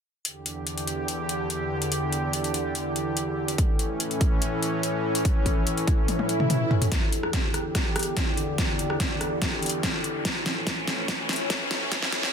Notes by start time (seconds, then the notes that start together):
0.25 E2 D3 E4 G4, closed hi-hat
0.46 closed hi-hat
0.67 closed hi-hat
0.78 A4, closed hi-hat
0.87 closed hi-hat
1.08 closed hi-hat
1.29 closed hi-hat
1.50 closed hi-hat
1.66 D5
1.82 closed hi-hat
1.92 closed hi-hat
2.13 closed hi-hat
2.33 closed hi-hat
2.44 closed hi-hat
2.54 closed hi-hat
2.75 closed hi-hat
2.96 closed hi-hat
3.17 closed hi-hat
3.48 closed hi-hat
3.58 A2 E3 C#4, kick, closed hi-hat
3.79 closed hi-hat
4.00 closed hi-hat
4.11 closed hi-hat
4.17 C#5
4.21 kick, closed hi-hat
4.42 closed hi-hat
4.63 closed hi-hat
4.83 closed hi-hat
5.15 closed hi-hat
5.25 kick, closed hi-hat
5.46 kick, closed hi-hat
5.67 closed hi-hat
5.78 closed hi-hat
5.87 kick, closed hi-hat
6.08 closed hi-hat, high tom, swell
6.19 high tom
6.29 closed hi-hat
6.40 mid tom
6.50 closed hi-hat, mid tom
6.71 mid tom
6.82 closed hi-hat, mid tom
6.92 E2 D3 G4, kick, snare, closed hi-hat, riser
7.12 closed hi-hat
7.23 cross-stick
7.33 kick, snare, closed hi-hat
7.54 cross-stick, closed hi-hat
7.75 kick, cross-stick, snare, closed hi-hat
7.96 cross-stick, closed hi-hat
7.99 closed hi-hat
8.03 closed hi-hat
8.16 D5, kick, snare, closed hi-hat
8.37 closed hi-hat
8.58 kick, snare, closed hi-hat
8.79 closed hi-hat
8.90 cross-stick
9.00 kick, snare, closed hi-hat
9.21 cross-stick, closed hi-hat
9.42 kick, snare, closed hi-hat
9.63 closed hi-hat
9.66 closed hi-hat
9.69 closed hi-hat
9.83 kick, snare, closed hi-hat
10.04 closed hi-hat
10.25 A2 E3 C#4, kick, snare, closed hi-hat
10.46 snare, closed hi-hat
10.62 C#5
10.67 kick, snare, closed hi-hat
10.88 snare, closed hi-hat
11.08 kick, snare, closed hi-hat
11.29 snare, closed hi-hat
11.33 closed hi-hat
11.36 closed hi-hat
11.50 kick, snare, closed hi-hat
11.71 snare, closed hi-hat
11.92 kick, snare, closed hi-hat
12.03 snare
12.13 snare, closed hi-hat
12.23 snare